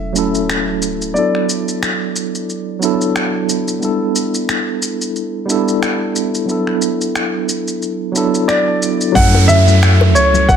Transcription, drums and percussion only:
0.16 shaker medium
0.35 shaker soft
0.50 finger snap loud
0.50 shaker soft
0.82 shaker medium
1.02 shaker soft
1.16 shaker soft
1.35 finger snap soft
1.49 shaker medium
1.68 shaker soft
1.83 finger snap loud
1.83 shaker soft
2.16 shaker medium
2.35 shaker soft
2.50 shaker soft
2.82 shaker medium
3.01 shaker soft
3.16 finger snap medium
3.16 shaker soft
3.49 shaker medium
3.68 shaker soft
3.82 shaker soft
4.16 shaker medium
4.34 shaker soft
4.49 finger snap medium
4.49 shaker soft
4.82 shaker medium
5.01 shaker soft
5.16 shaker soft
5.50 shaker medium
5.68 shaker soft
5.83 finger snap medium
5.83 shaker soft
6.16 shaker medium
6.35 shaker soft
6.49 shaker soft
6.67 finger snap soft
6.82 shaker medium
7.01 shaker soft
7.16 finger snap medium
7.16 shaker soft
7.49 shaker medium
7.68 shaker soft
7.82 shaker soft
8.16 shaker medium
8.34 shaker soft
8.49 finger snap medium
8.49 shaker soft
8.82 shaker medium
9.01 shaker soft
9.15 kick loud
9.15 high conga medium
9.15 shaker soft
9.35 high bongo medium
9.49 low conga medium
9.49 shaker medium
9.67 high conga medium
9.67 shaker soft
9.83 finger snap loud
9.83 shaker soft
10.01 high bongo medium
10.16 shaker medium
10.34 high conga medium
10.34 shaker soft
10.49 kick loud
10.49 high bongo medium
10.49 shaker soft

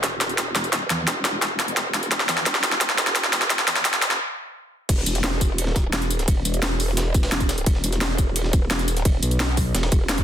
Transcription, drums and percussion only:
0.03 kick loud
0.03 snare medium
0.03 closed hi-hat medium
0.21 snare medium
0.21 closed hi-hat medium
0.21 tambourine medium
0.29 closed hi-hat soft
0.38 kick loud
0.38 snare medium
0.38 closed hi-hat medium
0.55 snare medium
0.55 closed hi-hat medium
0.55 tambourine medium
0.64 closed hi-hat soft
0.64 tambourine soft
0.73 kick loud
0.73 snare medium
0.73 closed hi-hat medium
0.90 snare medium
0.90 closed hi-hat medium
0.90 tambourine medium
1.07 kick loud
1.07 snare medium
1.07 closed hi-hat medium
1.25 snare medium
1.25 closed hi-hat medium
1.25 tambourine medium
1.42 kick loud
1.42 snare medium
1.42 closed hi-hat medium
1.59 snare medium
1.59 closed hi-hat medium
1.59 tambourine medium
1.68 closed hi-hat soft
1.77 kick loud
1.77 snare medium
1.77 closed hi-hat medium
1.94 snare medium
1.94 closed hi-hat medium
1.94 tambourine medium
2.03 closed hi-hat soft
2.03 tambourine soft
2.11 kick loud
2.11 snare medium
2.11 closed hi-hat medium
2.20 snare medium
2.29 snare medium
2.29 closed hi-hat medium
2.29 tambourine medium
2.37 snare medium
2.46 kick loud
2.46 snare loud
2.46 closed hi-hat medium
2.55 snare medium
2.63 snare loud
2.63 closed hi-hat medium
2.63 tambourine medium
2.72 snare medium
2.81 kick loud
2.81 snare loud
2.81 closed hi-hat medium
2.90 snare medium
2.98 snare loud
2.98 closed hi-hat medium
2.98 tambourine medium
3.07 snare medium
3.07 closed hi-hat soft
3.15 kick loud
3.15 snare loud
3.15 closed hi-hat medium
3.24 snare medium
3.33 snare loud
3.33 closed hi-hat medium
3.33 tambourine medium
3.42 snare medium
3.42 closed hi-hat soft
3.42 tambourine soft
3.50 kick loud
3.50 snare loud
3.50 closed hi-hat medium
3.59 snare medium
3.68 snare loud
3.68 closed hi-hat medium
3.68 tambourine medium
3.76 snare medium
3.76 tambourine soft
3.85 kick loud
3.85 snare loud
3.85 closed hi-hat medium
3.94 snare medium
3.94 closed hi-hat soft
4.02 snare loud
4.02 closed hi-hat medium
4.02 tambourine medium
4.11 snare medium
4.89 kick loud
4.89 closed hi-hat loud
4.89 crash loud
4.89 ride medium
4.98 snare soft
5.06 closed hi-hat medium
5.06 ride medium
5.06 tambourine medium
5.15 snare soft
5.15 closed hi-hat soft
5.15 tambourine soft
5.24 snare loud
5.24 closed hi-hat loud
5.24 ride medium
5.32 snare soft
5.41 kick medium
5.41 closed hi-hat medium
5.41 ride medium
5.41 tambourine medium
5.58 closed hi-hat loud
5.58 ride medium
5.67 snare medium
5.76 kick loud
5.76 snare loud
5.76 closed hi-hat medium
5.76 ride medium
5.76 tambourine medium
5.93 snare loud
5.93 closed hi-hat loud
5.93 ride medium
6.02 snare soft
6.02 closed hi-hat soft
6.10 closed hi-hat medium
6.10 ride medium
6.10 tambourine medium
6.19 snare medium
6.19 closed hi-hat soft
6.19 tambourine soft
6.28 kick loud
6.28 closed hi-hat loud
6.28 ride medium
6.45 closed hi-hat medium
6.45 ride medium
6.45 tambourine medium
6.54 closed hi-hat soft
6.54 tambourine soft
6.62 snare loud
6.62 closed hi-hat loud
6.62 ride medium
6.80 open hi-hat medium
6.80 ride medium
6.80 tambourine medium
6.88 snare soft
6.97 snare loud
6.97 closed hi-hat loud
6.97 open hi-hat medium
7.14 kick loud
7.14 closed hi-hat medium
7.14 ride medium
7.14 tambourine medium
7.23 snare loud
7.23 open hi-hat medium
7.32 snare loud
7.32 closed hi-hat loud
7.40 kick medium
7.40 closed hi-hat soft
7.40 ride medium
7.49 snare loud
7.49 closed hi-hat medium
7.49 open hi-hat medium
7.49 tambourine medium
7.58 closed hi-hat soft
7.58 tambourine soft
7.66 kick loud
7.66 closed hi-hat medium
7.66 ride medium
7.75 snare soft
7.84 closed hi-hat medium
7.84 ride medium
7.84 tambourine medium
7.92 snare soft
7.92 closed hi-hat soft
7.92 tambourine soft
8.01 snare loud
8.01 closed hi-hat loud
8.01 ride medium
8.10 snare soft
8.18 kick medium
8.18 closed hi-hat medium
8.18 ride medium
8.18 tambourine medium
8.36 closed hi-hat loud
8.36 ride medium
8.45 snare medium
8.53 kick loud
8.53 closed hi-hat medium
8.53 ride medium
8.53 tambourine medium
8.70 snare loud
8.70 closed hi-hat loud
8.70 ride medium
8.79 snare soft
8.79 closed hi-hat soft
8.88 closed hi-hat medium
8.88 ride medium
8.88 tambourine medium
8.97 snare medium
8.97 closed hi-hat soft
8.97 tambourine soft
9.05 kick loud
9.05 closed hi-hat medium
9.05 ride medium
9.22 closed hi-hat medium
9.22 ride medium
9.22 tambourine medium
9.31 closed hi-hat soft
9.31 tambourine soft
9.40 snare loud
9.40 closed hi-hat medium
9.40 ride medium
9.57 kick medium
9.57 open hi-hat medium
9.57 ride medium
9.57 tambourine medium
9.75 snare loud
9.75 closed hi-hat medium
9.75 ride medium
9.83 snare loud
9.83 ride medium
9.92 kick loud
9.92 closed hi-hat medium
9.92 ride medium
9.92 tambourine medium
10.09 snare loud
10.09 closed hi-hat medium
10.09 open hi-hat medium
10.18 kick medium
10.18 closed hi-hat soft

